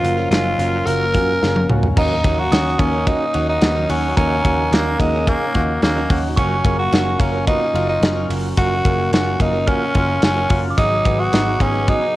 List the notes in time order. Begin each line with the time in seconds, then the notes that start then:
Already playing: F3 F#3 C#4 F4 A#4
0.03 F#1 A#3 F4 F#4, closed hi-hat
0.17 F#3 C#4 F4 A#4
0.31 F#1 A#3 C#4 F4 F#4, snare, closed hi-hat
0.58 F#1 F#3 A#3 C#4 F4 F#4 A#4, closed hi-hat
0.86 F#1 F#3 A#3 C#4 F4 F#4 A#4, closed hi-hat
1.14 F#2 A#3 C#4 F4 F#4, kick, closed hi-hat
1.41 F#1 F#3 A#3 C#4 F4 G#4 A#4, snare
1.56 high tom
1.69 C#2 A#3 C#4 F4 F#4, mid tom
1.83 floor tom
1.96 D#2 F#3 A#3 C#4 D#4 F#4 A#4 A#5, kick, crash
2.25 D#2 A#3 C#4 D#4 F#4, kick, ride
2.39 F#4
2.51 D#2 F#3 C#4 D#4 F#4 A#4 D#6, snare, ride
2.79 D#2 A#3 C#4 D#4 F#4, kick, ride
2.92 C#4 D#4 A#4
3.07 C#4 D#4 F#4, kick, ride
3.33 D#2 F#3 C#4 D#4 F#4 A#4, ride
3.49 D#4
3.62 D#2 B3 C#4 D#4 F#4, snare, ride
3.75 D#3 F#3 C#4 D#4 A#4
3.89 D#2 C#4 D#4 F#4, open hi-hat, ride
4.16 D#2 F#3 A#3 C#4 D#4 F#4 A#4 A#5, kick, hi-hat pedal, ride
4.44 D#2 A#3 C#4 D#4 F#4, kick, ride
4.71 D#2 F#3 A#3 C#4 D#4 F#4 A#4, snare, ride
4.99 D#2 G#3 A#3 C#4 D#4 F#4, kick, ride
5.13 C#4 D#4 A#4
5.27 A#3 C#4 D#4 G#4, kick, ride
5.54 D#2 F#3 C#4 D#4 F4 F#4 A#4, kick, ride
5.82 D#2 A#3 C#4 D#4 F#4, snare, ride
5.96 D#3 F#3 C#4 D#4 A#4
6.10 D#2 C#4 D#4 F#4, kick, open hi-hat, ride
6.36 F#1 F#3 A#3 C#4 F4 F#4 A#4 C#6, kick, hi-hat pedal, ride
6.65 F#1 A#3 F4 G#4, kick, ride
6.79 F#4
6.91 F#1 F#3 A#3 C#4 F4 G#4 A#4, snare, ride
7.20 F#1 A#3 C#4 F4 F#4, kick, ride
7.32 C#4 F4 A#4
7.47 A#3 B3 D#4 F4 F#4, kick, ride
7.62 C#4
7.73 F#1 F#3 A#3 C#4 F4 F#4 A#4, ride
7.89 D#4
8.02 F#1 A#3 C#4 F4 F#4, snare, ride
8.15 F#3 C#4 F4 A#4
8.30 F#1 A#3 F4 F#4, open hi-hat, ride
8.56 F#1 F#3 A#3 C#4 F4 F#4 A#4, kick, hi-hat pedal, ride
8.85 F#1 A#3 F4 G#4, kick, ride
9.11 F#1 F#3 A#3 C#4 F4 F#4 A#4, snare, ride
9.39 F#1 A#3 D#4 F4 F#4, kick, ride
9.53 C#4 F4 A#4
9.67 A#3 C#4 F4 F#4 F6, kick, ride
9.95 F#1 A#3 C#4 F4 F#4 A#4, kick, ride
10.22 F#1 A#3 C#4 F4 F#4, snare, ride
10.36 F#3 C#4 F4 A#4
10.50 F#1 A#3 F4 F#4, kick, open hi-hat, ride
10.70 D6
10.77 G#1 F#3 B3 D#4 F#4 G#4 D#6, kick, hi-hat pedal, ride
11.05 G#1 B3 F#4 G#4, kick, ride
11.20 F#4
11.32 G#1 F#3 B3 D#4 F#4 G#4, snare, ride
11.60 G#1 B3 C#4 F#4 G#4, kick, ride
11.72 F#3 B3 D#4 G#4
11.88 B3 C#4 D#4 F#4 G#4, kick, ride
12.02 D#4